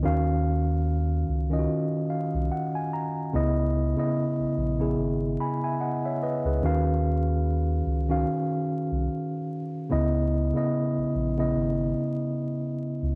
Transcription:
0.03 1.24 D#2 loud
0.03 0.98 D#3 loud
0.03 0.98 C#4 medium
0.03 0.99 F#4 medium
0.03 0.99 F5 loud
1.28 1.67 C#2 medium
1.50 2.54 D#3 medium
1.50 2.55 C#4 medium
1.50 1.57 F4 medium
1.50 2.56 D#5 medium
1.59 2.59 F#4 medium
2.10 2.48 F5 medium
2.34 2.50 C2 loud
2.52 2.73 F#5 medium
2.75 2.92 G#5 medium
2.94 3.31 A#5 medium
3.33 3.94 C#2 loud
3.33 3.73 C#3 loud
3.33 3.74 B3 medium
3.33 3.74 E4 medium
3.33 3.75 D#5 loud
3.96 4.48 C#3 medium
3.96 4.49 B3 medium
3.96 4.50 E4 medium
3.96 4.50 D#5 medium
4.39 4.46 A#1 soft
4.57 4.96 A#1 loud
4.79 5.83 C#3 medium
4.79 5.84 B3 medium
4.79 5.84 E4 medium
4.79 5.40 G#4 medium
4.98 5.37 G#1 loud
5.40 5.62 G#5 soft
5.40 5.62 B5 medium
5.64 5.80 E5 medium
5.64 5.80 G#5 medium
5.81 6.03 D#5 medium
5.81 6.02 F#5 medium
6.05 6.21 C#5 medium
6.05 6.21 E5 medium
6.23 6.44 B4 medium
6.23 6.44 D#5 medium
6.45 6.61 C#2 loud
6.45 6.84 G#4 medium
6.45 6.84 B4 medium
6.63 7.82 D#2 loud
6.63 7.57 D#3 medium
6.63 7.57 C#4 medium
6.63 7.58 F#4 medium
6.63 7.58 F5 loud
7.86 8.24 C#2 loud
8.08 9.12 D#3 medium
8.08 9.13 C#4 medium
8.08 9.13 F#4 medium
8.08 9.14 F5 medium
8.91 9.08 C2 loud
9.89 10.52 C#2 loud
9.89 10.30 C#3 medium
9.89 10.31 B3 medium
9.89 10.31 E4 medium
9.89 10.31 D#5 loud
10.54 11.06 C#3 medium
10.54 11.07 B3 medium
10.54 11.07 E4 medium
10.54 11.08 D#5 medium
10.97 11.04 A#1 soft
11.14 11.53 A#1 medium
11.37 12.41 C#3 medium
11.37 12.41 B3 medium
11.37 12.42 E4 medium
11.37 12.42 D#5 medium
11.55 11.94 G#1 loud
13.02 13.15 C#2 medium

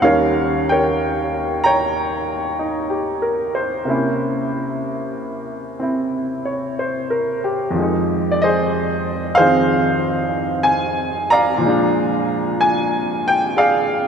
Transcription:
0.02 3.87 D#2 soft
0.02 3.88 D#3 soft
0.02 3.88 G3 soft
0.02 3.87 C#4 soft
0.02 0.70 A#4 medium
0.02 0.71 C#5 medium
0.02 0.64 F5 medium
0.69 2.59 A#4 medium
0.69 1.65 C#5 medium
0.69 1.61 G5 medium
1.64 3.54 C#5 medium
1.64 3.54 G5 medium
1.64 2.57 A#5 loud
2.59 3.09 D#4 soft
2.90 3.53 G4 soft
3.22 3.73 A#4 soft
3.55 4.06 C5 medium
3.85 7.73 C3 soft
3.85 7.73 A#3 soft
3.85 7.74 C#4 soft
3.90 5.81 E4 medium
5.80 7.73 C4 soft
5.80 7.75 E4 soft
6.45 6.96 C#5 soft
6.79 7.41 C5 soft
7.10 7.60 A#4 soft
7.44 7.94 G4 medium
7.71 11.59 F2 soft
7.71 9.38 F3 soft
7.78 11.62 G#3 soft
7.78 11.65 D#4 soft
8.31 8.41 D5 medium
8.42 9.36 G#4 medium
8.42 9.36 C5 medium
8.42 9.34 D#5 medium
9.35 11.27 G#4 medium
9.35 11.27 C5 medium
9.35 10.29 F5 loud
9.39 11.62 D#3 soft
9.39 11.59 F3 soft
9.39 11.63 C4 soft
10.63 10.78 G#5 medium
11.30 13.22 D5 medium
11.30 13.22 F5 medium
11.30 12.24 A#5 loud
11.57 14.07 A#2 medium
11.57 14.07 F3 soft
11.64 14.07 G#3 soft
11.64 14.07 D4 medium
12.61 13.28 G#5 medium
13.28 13.54 G5 medium
13.56 14.07 G#4 medium
13.56 14.07 D5 medium
13.56 14.07 F5 medium

